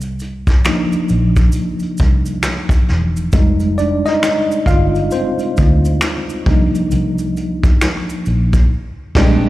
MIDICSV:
0, 0, Header, 1, 5, 480
1, 0, Start_track
1, 0, Key_signature, -3, "minor"
1, 0, Tempo, 895522
1, 1784, Time_signature, 4, 2, 24, 8
1, 5088, End_track
2, 0, Start_track
2, 0, Title_t, "Clean electric guitar"
2, 0, Program_c, 0, 27
2, 4915, Note_on_c, 0, 67, 82
2, 4918, Note_on_c, 0, 62, 90
2, 5084, Note_off_c, 0, 67, 0
2, 5085, Note_off_c, 0, 62, 0
2, 5088, End_track
3, 0, Start_track
3, 0, Title_t, "Tine electric piano"
3, 0, Program_c, 1, 4
3, 0, Control_c, 1, 64, 127
3, 348, Note_on_c, 1, 53, 53
3, 352, Note_on_c, 1, 58, 48
3, 355, Note_on_c, 1, 62, 48
3, 356, Note_on_c, 1, 63, 53
3, 688, Note_off_c, 1, 53, 0
3, 690, Note_off_c, 1, 58, 0
3, 691, Note_off_c, 1, 62, 0
3, 692, Note_off_c, 1, 63, 0
3, 1789, Note_on_c, 1, 55, 54
3, 1792, Control_c, 1, 64, 0
3, 1792, Note_on_c, 1, 56, 50
3, 1797, Note_on_c, 1, 63, 57
3, 1899, Control_c, 1, 64, 127
3, 2025, Note_on_c, 1, 74, 84
3, 2037, Note_on_c, 1, 62, 63
3, 2170, Note_off_c, 1, 62, 0
3, 2174, Note_on_c, 1, 75, 88
3, 2179, Note_off_c, 1, 74, 0
3, 2182, Note_off_c, 1, 63, 0
3, 2188, Note_on_c, 1, 63, 70
3, 2485, Note_off_c, 1, 55, 0
3, 2487, Note_off_c, 1, 56, 0
3, 2490, Note_off_c, 1, 63, 0
3, 2503, Note_on_c, 1, 77, 88
3, 2515, Note_off_c, 1, 75, 0
3, 2515, Note_on_c, 1, 65, 73
3, 2733, Note_off_c, 1, 65, 0
3, 2746, Note_on_c, 1, 72, 72
3, 2751, Note_off_c, 1, 77, 0
3, 2757, Note_on_c, 1, 60, 59
3, 3444, Note_off_c, 1, 72, 0
3, 3449, Note_off_c, 1, 60, 0
3, 3470, Note_on_c, 1, 53, 51
3, 3473, Control_c, 1, 64, 0
3, 3474, Note_on_c, 1, 58, 46
3, 3476, Note_on_c, 1, 62, 45
3, 3478, Note_on_c, 1, 63, 57
3, 3571, Control_c, 1, 64, 127
3, 4646, Note_off_c, 1, 53, 0
3, 4648, Note_off_c, 1, 58, 0
3, 4649, Note_off_c, 1, 62, 0
3, 4650, Note_off_c, 1, 63, 0
3, 4671, Control_c, 1, 64, 0
3, 4776, Control_c, 1, 64, 127
3, 4911, Note_on_c, 1, 55, 92
3, 4912, Note_on_c, 1, 56, 93
3, 4914, Note_on_c, 1, 60, 88
3, 4917, Note_on_c, 1, 62, 90
3, 5081, Note_off_c, 1, 55, 0
3, 5082, Note_off_c, 1, 56, 0
3, 5083, Note_off_c, 1, 60, 0
3, 5085, Note_off_c, 1, 62, 0
3, 5088, End_track
4, 0, Start_track
4, 0, Title_t, "Fingered electric bass"
4, 0, Program_c, 2, 33
4, 0, Note_on_c, 2, 36, 83
4, 236, Note_off_c, 2, 36, 0
4, 592, Note_on_c, 2, 34, 78
4, 807, Note_off_c, 2, 34, 0
4, 1074, Note_on_c, 2, 36, 79
4, 1288, Note_off_c, 2, 36, 0
4, 1552, Note_on_c, 2, 28, 76
4, 1767, Note_off_c, 2, 28, 0
4, 1789, Note_on_c, 2, 29, 85
4, 2155, Note_off_c, 2, 29, 0
4, 2502, Note_on_c, 2, 31, 75
4, 2722, Note_off_c, 2, 31, 0
4, 2994, Note_on_c, 2, 38, 84
4, 3208, Note_off_c, 2, 38, 0
4, 3468, Note_on_c, 2, 36, 91
4, 3685, Note_off_c, 2, 36, 0
4, 3712, Note_on_c, 2, 36, 97
4, 4076, Note_off_c, 2, 36, 0
4, 4433, Note_on_c, 2, 34, 79
4, 4647, Note_off_c, 2, 34, 0
4, 4910, Note_on_c, 2, 34, 89
4, 5081, Note_off_c, 2, 34, 0
4, 5088, End_track
5, 0, Start_track
5, 0, Title_t, "Drums"
5, 6, Note_on_c, 9, 82, 46
5, 15, Note_on_c, 9, 42, 42
5, 59, Note_off_c, 9, 82, 0
5, 69, Note_off_c, 9, 42, 0
5, 105, Note_on_c, 9, 82, 43
5, 114, Note_on_c, 9, 42, 66
5, 159, Note_off_c, 9, 82, 0
5, 168, Note_off_c, 9, 42, 0
5, 252, Note_on_c, 9, 36, 83
5, 253, Note_on_c, 9, 82, 41
5, 256, Note_on_c, 9, 42, 44
5, 261, Note_on_c, 9, 38, 28
5, 306, Note_off_c, 9, 36, 0
5, 307, Note_off_c, 9, 82, 0
5, 309, Note_off_c, 9, 42, 0
5, 314, Note_off_c, 9, 38, 0
5, 347, Note_on_c, 9, 26, 58
5, 347, Note_on_c, 9, 82, 57
5, 352, Note_off_c, 9, 26, 0
5, 352, Note_on_c, 9, 26, 74
5, 353, Note_on_c, 9, 38, 95
5, 353, Note_on_c, 9, 42, 75
5, 400, Note_off_c, 9, 82, 0
5, 405, Note_off_c, 9, 26, 0
5, 406, Note_off_c, 9, 42, 0
5, 407, Note_off_c, 9, 38, 0
5, 496, Note_on_c, 9, 82, 44
5, 499, Note_on_c, 9, 42, 45
5, 549, Note_off_c, 9, 82, 0
5, 552, Note_off_c, 9, 42, 0
5, 583, Note_on_c, 9, 82, 43
5, 587, Note_on_c, 9, 42, 57
5, 636, Note_off_c, 9, 82, 0
5, 640, Note_off_c, 9, 42, 0
5, 730, Note_on_c, 9, 82, 38
5, 732, Note_on_c, 9, 36, 80
5, 737, Note_on_c, 9, 42, 44
5, 784, Note_off_c, 9, 82, 0
5, 785, Note_off_c, 9, 36, 0
5, 791, Note_off_c, 9, 42, 0
5, 816, Note_on_c, 9, 82, 57
5, 827, Note_on_c, 9, 42, 76
5, 869, Note_off_c, 9, 82, 0
5, 881, Note_off_c, 9, 42, 0
5, 962, Note_on_c, 9, 82, 36
5, 976, Note_on_c, 9, 42, 46
5, 1016, Note_off_c, 9, 82, 0
5, 1030, Note_off_c, 9, 42, 0
5, 1058, Note_on_c, 9, 82, 44
5, 1070, Note_on_c, 9, 36, 93
5, 1070, Note_on_c, 9, 42, 61
5, 1111, Note_off_c, 9, 82, 0
5, 1124, Note_off_c, 9, 36, 0
5, 1124, Note_off_c, 9, 42, 0
5, 1210, Note_on_c, 9, 82, 47
5, 1216, Note_on_c, 9, 42, 41
5, 1263, Note_off_c, 9, 82, 0
5, 1269, Note_off_c, 9, 42, 0
5, 1301, Note_on_c, 9, 26, 75
5, 1303, Note_off_c, 9, 26, 0
5, 1303, Note_on_c, 9, 26, 59
5, 1303, Note_on_c, 9, 38, 99
5, 1303, Note_on_c, 9, 82, 64
5, 1307, Note_on_c, 9, 42, 77
5, 1356, Note_off_c, 9, 26, 0
5, 1356, Note_off_c, 9, 38, 0
5, 1356, Note_off_c, 9, 82, 0
5, 1361, Note_off_c, 9, 42, 0
5, 1442, Note_on_c, 9, 36, 90
5, 1452, Note_on_c, 9, 42, 46
5, 1452, Note_on_c, 9, 82, 46
5, 1496, Note_off_c, 9, 36, 0
5, 1506, Note_off_c, 9, 42, 0
5, 1506, Note_off_c, 9, 82, 0
5, 1545, Note_on_c, 9, 42, 59
5, 1547, Note_on_c, 9, 38, 28
5, 1598, Note_off_c, 9, 42, 0
5, 1601, Note_off_c, 9, 38, 0
5, 1696, Note_on_c, 9, 82, 51
5, 1698, Note_on_c, 9, 42, 43
5, 1750, Note_off_c, 9, 82, 0
5, 1751, Note_off_c, 9, 42, 0
5, 1781, Note_on_c, 9, 82, 59
5, 1784, Note_on_c, 9, 36, 108
5, 1787, Note_on_c, 9, 42, 74
5, 1834, Note_off_c, 9, 82, 0
5, 1838, Note_off_c, 9, 36, 0
5, 1841, Note_off_c, 9, 42, 0
5, 1928, Note_on_c, 9, 82, 47
5, 1935, Note_on_c, 9, 42, 46
5, 1982, Note_off_c, 9, 82, 0
5, 1988, Note_off_c, 9, 42, 0
5, 2028, Note_on_c, 9, 82, 46
5, 2033, Note_on_c, 9, 42, 60
5, 2082, Note_off_c, 9, 82, 0
5, 2087, Note_off_c, 9, 42, 0
5, 2175, Note_on_c, 9, 42, 46
5, 2175, Note_on_c, 9, 82, 42
5, 2180, Note_on_c, 9, 38, 29
5, 2228, Note_off_c, 9, 42, 0
5, 2229, Note_off_c, 9, 82, 0
5, 2233, Note_off_c, 9, 38, 0
5, 2267, Note_on_c, 9, 26, 75
5, 2267, Note_on_c, 9, 42, 83
5, 2268, Note_on_c, 9, 38, 95
5, 2271, Note_off_c, 9, 26, 0
5, 2271, Note_on_c, 9, 26, 57
5, 2271, Note_on_c, 9, 82, 59
5, 2321, Note_off_c, 9, 38, 0
5, 2321, Note_off_c, 9, 42, 0
5, 2324, Note_off_c, 9, 26, 0
5, 2324, Note_off_c, 9, 82, 0
5, 2417, Note_on_c, 9, 42, 44
5, 2420, Note_on_c, 9, 82, 45
5, 2470, Note_off_c, 9, 42, 0
5, 2474, Note_off_c, 9, 82, 0
5, 2498, Note_on_c, 9, 36, 84
5, 2503, Note_on_c, 9, 42, 58
5, 2507, Note_on_c, 9, 82, 42
5, 2551, Note_off_c, 9, 36, 0
5, 2557, Note_off_c, 9, 42, 0
5, 2560, Note_off_c, 9, 82, 0
5, 2655, Note_on_c, 9, 82, 38
5, 2657, Note_on_c, 9, 42, 48
5, 2708, Note_off_c, 9, 82, 0
5, 2710, Note_off_c, 9, 42, 0
5, 2739, Note_on_c, 9, 82, 54
5, 2749, Note_on_c, 9, 42, 71
5, 2793, Note_off_c, 9, 82, 0
5, 2802, Note_off_c, 9, 42, 0
5, 2889, Note_on_c, 9, 82, 37
5, 2895, Note_on_c, 9, 42, 47
5, 2943, Note_off_c, 9, 82, 0
5, 2948, Note_off_c, 9, 42, 0
5, 2985, Note_on_c, 9, 82, 44
5, 2989, Note_on_c, 9, 42, 61
5, 2990, Note_on_c, 9, 36, 89
5, 3038, Note_off_c, 9, 82, 0
5, 3043, Note_off_c, 9, 42, 0
5, 3044, Note_off_c, 9, 36, 0
5, 3135, Note_on_c, 9, 42, 43
5, 3135, Note_on_c, 9, 82, 46
5, 3188, Note_off_c, 9, 42, 0
5, 3189, Note_off_c, 9, 82, 0
5, 3221, Note_on_c, 9, 26, 77
5, 3223, Note_on_c, 9, 38, 93
5, 3227, Note_off_c, 9, 26, 0
5, 3227, Note_on_c, 9, 26, 63
5, 3227, Note_on_c, 9, 42, 76
5, 3227, Note_on_c, 9, 82, 67
5, 3276, Note_off_c, 9, 38, 0
5, 3280, Note_off_c, 9, 26, 0
5, 3280, Note_off_c, 9, 82, 0
5, 3281, Note_off_c, 9, 42, 0
5, 3372, Note_on_c, 9, 42, 46
5, 3375, Note_on_c, 9, 82, 45
5, 3426, Note_off_c, 9, 42, 0
5, 3428, Note_off_c, 9, 82, 0
5, 3464, Note_on_c, 9, 36, 99
5, 3466, Note_on_c, 9, 46, 46
5, 3518, Note_off_c, 9, 36, 0
5, 3519, Note_off_c, 9, 46, 0
5, 3616, Note_on_c, 9, 42, 42
5, 3619, Note_on_c, 9, 82, 48
5, 3670, Note_off_c, 9, 42, 0
5, 3673, Note_off_c, 9, 82, 0
5, 3705, Note_on_c, 9, 42, 76
5, 3705, Note_on_c, 9, 82, 58
5, 3759, Note_off_c, 9, 42, 0
5, 3759, Note_off_c, 9, 82, 0
5, 3851, Note_on_c, 9, 82, 43
5, 3853, Note_on_c, 9, 42, 43
5, 3904, Note_off_c, 9, 82, 0
5, 3907, Note_off_c, 9, 42, 0
5, 3949, Note_on_c, 9, 82, 47
5, 3950, Note_on_c, 9, 42, 67
5, 4003, Note_off_c, 9, 42, 0
5, 4003, Note_off_c, 9, 82, 0
5, 4092, Note_on_c, 9, 36, 90
5, 4094, Note_on_c, 9, 42, 43
5, 4095, Note_on_c, 9, 82, 42
5, 4146, Note_off_c, 9, 36, 0
5, 4148, Note_off_c, 9, 42, 0
5, 4149, Note_off_c, 9, 82, 0
5, 4189, Note_on_c, 9, 26, 59
5, 4189, Note_on_c, 9, 42, 81
5, 4189, Note_on_c, 9, 82, 57
5, 4190, Note_on_c, 9, 38, 99
5, 4243, Note_off_c, 9, 26, 0
5, 4243, Note_off_c, 9, 38, 0
5, 4243, Note_off_c, 9, 42, 0
5, 4243, Note_off_c, 9, 82, 0
5, 4336, Note_on_c, 9, 42, 45
5, 4340, Note_on_c, 9, 82, 46
5, 4390, Note_off_c, 9, 42, 0
5, 4393, Note_off_c, 9, 82, 0
5, 4426, Note_on_c, 9, 82, 39
5, 4427, Note_on_c, 9, 42, 56
5, 4479, Note_off_c, 9, 82, 0
5, 4481, Note_off_c, 9, 42, 0
5, 4573, Note_on_c, 9, 36, 81
5, 4574, Note_on_c, 9, 82, 39
5, 4578, Note_on_c, 9, 42, 46
5, 4627, Note_off_c, 9, 36, 0
5, 4628, Note_off_c, 9, 82, 0
5, 4632, Note_off_c, 9, 42, 0
5, 4904, Note_on_c, 9, 49, 80
5, 4905, Note_on_c, 9, 36, 106
5, 4910, Note_on_c, 9, 38, 96
5, 4958, Note_off_c, 9, 49, 0
5, 4959, Note_off_c, 9, 36, 0
5, 4964, Note_off_c, 9, 38, 0
5, 5088, End_track
0, 0, End_of_file